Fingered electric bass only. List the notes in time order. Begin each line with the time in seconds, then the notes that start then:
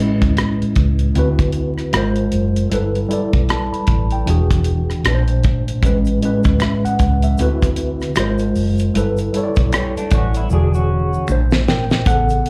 0.22 D2
0.61 muted fingered electric bass stroke
0.77 C#2
1.16 D2
1.94 G#1
2.33 F#1
2.72 G1
3.34 B1
3.72 muted fingered electric bass stroke
3.88 A1
4.27 E1
5.05 A#1
5.45 G#1
5.83 A1
6.46 D2
6.84 muted fingered electric bass stroke
7.00 C#2
7.39 D2
8.17 G#1
8.56 F#1
8.95 G1
9.57 B1
9.96 muted fingered electric bass stroke
10.12 A1
10.51 E1
11.29 A#1
11.68 G#1
12.06 A1